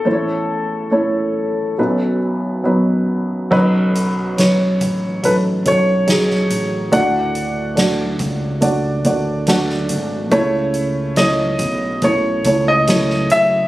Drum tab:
CC |----------------|x---------------|----------------|----------------|
HH |----------------|--x-x-x-x-x-x-x-|x-x-x-x-x-x-x-x-|x-x-x-x-x-x-x-x-|
SD |----------------|----o-------oo--|----o-------oo--|----o-------oo--|
BD |----------------|o-----o-o-o-----|o-----o-o-o-----|o-----o-o-o-----|